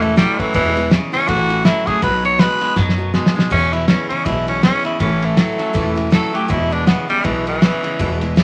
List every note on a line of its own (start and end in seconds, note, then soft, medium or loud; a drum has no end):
0.00 0.21 E1 medium
0.00 0.14 A2 medium
0.00 0.14 E3 medium
0.00 0.17 A3 loud
0.00 0.15 A3 soft
0.00 0.16 C#4 medium
0.00 0.17 E4 medium
0.00 ride medium
0.16 0.37 A2 medium
0.16 0.38 E3 medium
0.16 0.37 F#3 loud
0.16 0.40 G3 medium
0.16 0.39 A3 medium
0.16 0.38 C#4 medium
0.16 0.38 E4 medium
0.16 snare loud
0.16 ride medium
0.39 0.53 A2 medium
0.39 0.54 E3 loud
0.39 0.53 F#3 medium
0.39 0.54 A3 medium
0.39 0.54 C#4 medium
0.39 0.54 E4 medium
0.39 muted upright bass stroke medium
0.39 kick medium
0.39 ride medium
0.53 0.95 E1 loud
0.53 0.76 E2 medium
0.53 0.88 E2 medium
0.53 0.76 B2 medium
0.53 0.89 B2 loud
0.53 0.76 E3 medium
0.53 0.90 E3 loud
0.53 0.76 G#3 medium
0.53 0.75 B3 medium
0.53 0.74 E4 medium
0.53 kick loud
0.53 ride medium
0.75 0.89 E3 medium
0.75 0.90 G#3 medium
0.75 0.90 B3 medium
0.75 0.90 E4 medium
0.75 snare soft
0.75 ride medium
0.90 1.11 E2 medium
0.90 1.11 C#3 loud
0.90 1.12 E3 medium
0.90 1.12 G#3 medium
0.90 1.12 B3 medium
0.90 1.11 E4 medium
0.90 snare loud
0.90 ride medium
1.12 1.27 E2 medium
1.12 1.27 C#3 medium
1.12 1.26 E3 soft
1.12 1.27 G#3 soft
1.12 1.28 B3 medium
1.12 1.29 C#4 loud
1.12 1.27 E4 medium
1.12 muted upright bass stroke medium
1.12 ride medium
1.27 1.69 A1 medium
1.27 1.49 A2 medium
1.27 1.62 A2 medium
1.27 1.50 E3 medium
1.27 1.63 E3 medium
1.27 1.49 A3 medium
1.27 1.49 C#4 medium
1.27 1.47 E4 loud
1.27 1.64 F#4 loud
1.27 kick loud
1.27 ride medium
1.49 1.64 A3 soft
1.49 1.64 C#4 medium
1.49 1.65 E4 medium
1.49 ride medium
1.64 1.85 A2 medium
1.64 1.87 E3 medium
1.64 1.85 F#3 loud
1.64 1.87 A3 medium
1.64 1.86 C#4 medium
1.64 1.88 E4 loud
1.64 1.85 E4 medium
1.64 snare loud
1.64 ride medium
1.86 2.01 A2 medium
1.86 2.01 F#3 medium
1.86 2.02 A3 medium
1.86 2.03 C#4 medium
1.86 2.02 E4 medium
1.86 2.02 G#4 loud
1.86 kick medium
1.86 ride medium
2.02 2.44 B1 loud
2.02 2.36 B2 medium
2.02 2.24 B2 medium
2.02 2.24 F#3 medium
2.02 2.37 F#3 medium
2.02 2.24 B3 medium
2.02 2.23 D#4 medium
2.02 2.22 F#4 medium
2.02 2.24 B4 loud
2.02 kick loud
2.02 ride medium
2.23 2.38 B3 soft
2.23 2.39 D#4 medium
2.23 2.39 F#4 medium
2.23 2.41 C#5 loud
2.23 ride medium
2.39 2.59 B2 medium
2.39 2.61 F#3 medium
2.39 2.60 G#3 medium
2.39 2.61 B3 medium
2.39 2.61 D#4 medium
2.39 2.60 F#4 medium
2.39 2.76 B4 loud
2.39 snare loud
2.39 ride medium
2.61 2.75 B2 medium
2.61 2.75 G#3 medium
2.61 2.76 B3 soft
2.61 2.76 D#4 medium
2.61 2.76 F#4 medium
2.61 muted upright bass stroke medium
2.61 ride medium
2.76 3.18 F#2 medium
2.76 2.98 B2 medium
2.76 3.11 B2 medium
2.76 2.98 F#3 medium
2.76 3.11 F#3 loud
2.76 2.99 B3 medium
2.76 2.98 D#4 medium
2.76 2.97 F#4 medium
2.76 kick loud
2.76 snare medium
2.89 snare medium
2.98 3.13 B3 medium
2.98 3.14 D#4 medium
2.98 3.14 F#4 medium
3.14 3.34 B2 medium
3.14 3.36 F#3 medium
3.14 3.34 G#3 loud
3.14 3.36 B3 medium
3.14 3.35 D#4 medium
3.14 3.34 F#4 medium
3.14 snare medium
3.26 snare loud
3.35 3.49 B2 medium
3.35 3.50 G#3 medium
3.35 3.50 B3 medium
3.35 3.50 D#4 medium
3.35 3.51 F#4 medium
3.35 muted upright bass stroke medium
3.35 snare medium
3.50 3.72 E2 medium
3.50 3.92 E2 loud
3.50 3.85 E2 medium
3.50 3.73 B2 medium
3.50 3.86 B2 medium
3.50 3.73 E3 medium
3.50 3.73 G#3 medium
3.50 3.72 B3 medium
3.50 3.74 C#4 loud
3.50 3.71 E4 medium
3.50 kick loud
3.50 crash loud
3.72 3.86 E3 soft
3.72 3.87 G#3 soft
3.72 3.88 B3 medium
3.72 3.88 E4 medium
3.72 3.87 E4 loud
3.72 ride medium
3.87 4.08 E2 medium
3.87 4.09 C#3 medium
3.87 4.10 E3 medium
3.87 4.10 G#3 medium
3.87 4.10 B3 medium
3.87 4.08 C#4 medium
3.87 4.09 E4 medium
3.87 snare loud
3.87 ride medium
4.09 4.25 E2 medium
4.09 4.25 C#3 medium
4.09 4.25 E3 soft
4.09 4.25 G#3 medium
4.09 4.25 B3 medium
4.09 4.26 C#4 loud
4.09 4.25 E4 medium
4.09 muted upright bass stroke medium
4.09 ride medium
4.25 4.67 B1 medium
4.25 4.47 E2 medium
4.25 4.60 E2 medium
4.25 4.48 B2 medium
4.25 4.60 B2 medium
4.25 4.47 E3 medium
4.25 4.47 G#3 medium
4.25 4.46 B3 medium
4.25 4.47 E4 medium
4.25 4.46 E4 medium
4.25 kick loud
4.25 ride medium
4.47 4.61 E3 soft
4.47 4.62 G#3 soft
4.47 4.62 B3 medium
4.47 4.63 C#4 medium
4.47 4.63 E4 medium
4.47 ride medium
4.62 4.83 E2 medium
4.62 4.83 C#3 loud
4.62 4.84 E3 medium
4.62 4.83 G#3 medium
4.62 4.83 B3 medium
4.62 4.84 C#4 loud
4.62 4.82 E4 medium
4.62 snare loud
4.62 ride medium
4.83 4.98 E2 medium
4.83 4.99 C#3 medium
4.83 4.99 E3 soft
4.83 5.00 G#3 medium
4.83 5.00 B3 medium
4.83 4.99 E4 medium
4.83 5.00 E4 medium
4.83 muted upright bass stroke medium
4.83 ride medium
4.99 5.41 A1 loud
4.99 5.22 A2 medium
4.99 5.34 A2 medium
4.99 5.22 E3 medium
4.99 5.34 E3 loud
4.99 5.22 A3 medium
4.99 5.21 C#4 medium
4.99 5.26 C#4 medium
4.99 5.20 E4 medium
4.99 kick loud
4.99 ride medium
5.21 5.36 A3 soft
5.21 5.96 A3 loud
5.21 5.37 C#4 medium
5.21 5.37 E4 medium
5.21 ride medium
5.36 5.57 A2 medium
5.36 5.59 E3 medium
5.36 5.57 F#3 loud
5.36 5.59 A3 medium
5.36 5.58 C#4 medium
5.36 5.57 E4 medium
5.36 snare loud
5.36 ride medium
5.58 5.73 A2 medium
5.58 5.73 F#3 medium
5.58 5.73 A3 soft
5.58 5.73 C#4 medium
5.58 5.74 E4 medium
5.58 muted upright bass stroke medium
5.58 ride medium
5.73 6.16 E1 medium
5.73 5.96 A2 medium
5.73 6.09 A2 medium
5.73 5.96 E3 medium
5.73 6.09 E3 medium
5.73 5.96 A3 medium
5.73 5.95 C#4 medium
5.73 5.94 E4 loud
5.73 kick loud
5.73 ride medium
5.95 6.09 A3 medium
5.95 6.10 C#4 medium
5.95 6.10 E4 medium
5.95 ride medium
6.10 6.32 A2 medium
6.10 6.33 E3 medium
6.10 6.32 F#3 loud
6.10 6.33 A3 medium
6.10 6.32 C#4 medium
6.10 6.31 E4 medium
6.10 6.34 A4 loud
6.10 snare loud
6.10 ride medium
6.33 6.48 A2 medium
6.33 6.48 F#3 medium
6.33 6.48 A3 soft
6.33 6.49 C#4 medium
6.33 6.48 E4 medium
6.33 6.51 G4 medium
6.33 muted upright bass stroke medium
6.33 ride medium
6.48 6.91 E1 loud
6.48 6.71 E2 medium
6.48 6.84 E2 medium
6.48 6.71 B2 medium
6.48 6.84 B2 loud
6.48 6.70 E3 medium
6.48 6.70 G#3 medium
6.48 6.69 B3 medium
6.48 6.69 E4 medium
6.48 6.74 E4 loud
6.48 kick loud
6.48 ride medium
6.70 6.85 E3 soft
6.70 6.86 G#3 soft
6.70 6.86 B3 medium
6.70 6.86 D4 medium
6.70 6.86 E4 medium
6.70 ride medium
6.86 7.07 E2 medium
6.86 7.07 C#3 medium
6.86 7.09 E3 medium
6.86 7.09 G#3 medium
6.86 7.08 B3 medium
6.86 7.07 E4 medium
6.86 snare loud
6.86 ride medium
7.08 7.23 E2 medium
7.08 7.23 C#3 medium
7.08 7.23 E3 medium
7.08 7.26 G3 loud
7.08 7.23 G#3 medium
7.08 7.23 B3 medium
7.08 7.23 E4 medium
7.08 muted upright bass stroke medium
7.08 ride medium
7.23 7.66 B1 medium
7.23 7.46 E2 medium
7.23 7.59 E2 medium
7.23 7.46 B2 medium
7.23 7.59 B2 loud
7.23 7.46 E3 loud
7.23 7.46 E3 medium
7.23 7.46 G#3 medium
7.23 7.45 B3 medium
7.23 7.44 E4 medium
7.23 kick loud
7.23 ride medium
7.45 7.60 E3 soft
7.45 8.20 E3 loud
7.45 7.61 G#3 soft
7.45 7.61 B3 medium
7.45 7.62 E4 medium
7.45 ride medium
7.61 7.82 E2 medium
7.61 7.82 C#3 loud
7.61 7.84 E3 medium
7.61 7.83 G#3 medium
7.61 7.83 B3 medium
7.61 7.82 E4 medium
7.61 snare loud
7.61 ride medium
7.83 7.98 E2 medium
7.83 7.98 C#3 medium
7.83 7.98 E3 soft
7.83 7.99 G#3 medium
7.83 7.99 B3 medium
7.83 7.99 E4 medium
7.83 muted upright bass stroke medium
7.83 ride medium
7.99 8.41 E1 loud
7.99 8.21 E2 medium
7.99 8.34 E2 medium
7.99 8.22 B2 loud
7.99 8.34 B2 loud
7.99 8.22 E3 medium
7.99 8.22 G#3 medium
7.99 8.21 B3 medium
7.99 8.20 E4 loud
7.99 kick loud
7.99 ride medium
8.21 8.35 E3 medium
8.21 8.36 G#3 medium
8.21 8.36 B3 medium
8.21 8.37 E4 medium
8.21 ride medium
8.36 8.44 E2 medium
8.36 8.44 C#3 medium
8.36 8.44 E3 medium
8.36 8.44 G#3 medium
8.36 8.44 B3 medium
8.36 8.44 E4 medium
8.36 kick medium
8.36 snare loud
8.36 ride medium